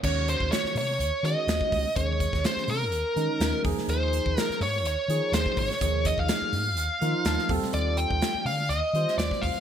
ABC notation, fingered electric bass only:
X:1
M:4/4
L:1/16
Q:1/4=125
K:Bbm
V:1 name="Fingered electric bass" clef=bass
E,,3 E,, z2 C,2 E,, z E, z E,, z D,, z | E,,3 E,, z2 C,2 E,, z E, z E,, z E,, z | E,,3 E,, z2 A,,2 E,, z E, z E,, z A,,, z | E,,3 E,, z2 A,,2 E,, z E, z E,, z E,, z |
E,,3 E,, z2 =D,2 E,, z E, z E,, z E,, z |]